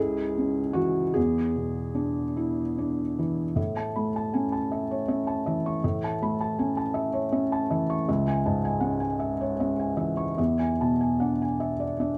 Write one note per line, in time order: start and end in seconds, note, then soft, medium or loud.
0.00 1.12 C#2 medium
0.00 0.20 C#4 soft
0.00 0.60 E4 soft
0.00 0.75 G#4 medium
0.38 1.01 C#4 soft
0.73 1.16 E3 soft
0.73 1.15 F#4 medium
1.14 3.53 E2 medium
1.14 3.17 G#4 medium
1.56 2.21 B2 soft
1.95 2.61 D4 soft
2.37 3.01 E4 soft
2.78 3.42 D4 soft
3.19 3.57 E3 soft
3.56 5.78 A2 soft
3.56 3.87 E5 soft
3.77 4.07 A5 soft
3.96 4.56 A3 soft
3.96 4.14 B5 soft
4.16 4.45 A5 soft
4.34 4.93 C#4 soft
4.34 4.52 G#5 soft
4.52 4.82 A5 soft
4.72 5.01 E5 soft
4.91 5.20 C#5 soft
5.08 5.68 C#4 soft
5.08 5.38 E5 soft
5.27 5.57 A5 soft
5.46 6.06 E3 soft
5.46 5.76 E5 soft
5.66 5.95 C#6 soft
5.84 8.04 A2 soft
5.84 6.13 E5 soft
6.04 6.32 A5 soft
6.22 6.81 A3 soft
6.22 6.40 B5 soft
6.41 6.69 A5 soft
6.59 7.18 C#4 soft
6.59 6.77 G#5 soft
6.77 7.06 A5 soft
6.94 7.24 E5 medium
7.13 7.43 C#5 soft
7.32 7.92 C#4 soft
7.32 7.62 E5 soft
7.52 7.82 A5 soft
7.71 8.08 E3 soft
7.71 8.00 E5 soft
7.90 8.08 C#6 soft
8.09 10.34 C#2 medium
8.09 8.38 E5 soft
8.28 8.57 G#5 soft
8.46 9.06 G#2 soft
8.46 8.64 A5 soft
8.65 8.95 G#5 soft
8.81 9.42 C#4 soft
8.81 9.01 F#5 soft
9.00 9.31 G#5 soft
9.20 9.51 E5 soft
9.41 9.71 C#5 soft
9.60 10.22 C#4 soft
9.60 9.90 E5 soft
9.80 10.10 G#5 soft
9.97 10.37 E3 soft
9.97 10.29 E5 soft
10.17 10.37 C#6 soft
10.37 12.18 E2 soft
10.37 10.70 E5 soft
10.59 10.91 G#5 soft
10.81 11.44 B2 soft
10.81 11.00 A5 soft
11.01 11.32 G#5 soft
11.20 11.83 D4 soft
11.20 11.39 F#5 soft
11.42 11.72 G#5 soft
11.60 11.91 E5 soft
11.80 12.11 D5 soft
11.99 12.18 D4 soft
11.99 12.18 E5 soft